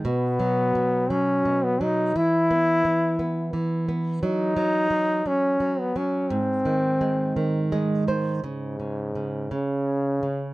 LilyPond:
<<
  \new Staff \with { instrumentName = "Trombone" } { \time 6/8 \key gis \phrygian \tempo 4. = 57 b4. cis'8. b16 dis'8 | e'2 r4 | dis'4. cis'8. b16 cis'8 | bis2 r4 |
gis,4. cis4. | }
  \new Staff \with { instrumentName = "Nylon-string guitar" } { \clef bass \time 6/8 \key gis \phrygian b,8 fis8 b,8 fis8 b,8 fis8 | e8 b8 e8 b8 e8 b8 | fis8 fis8 fis8 fis8 fis8 fis8 | gis,8 dis8 gis8 dis8 <gis dis''>8 <dis bis'>8 |
cis8 cis8 cis8 cis4 cis8 | }
>>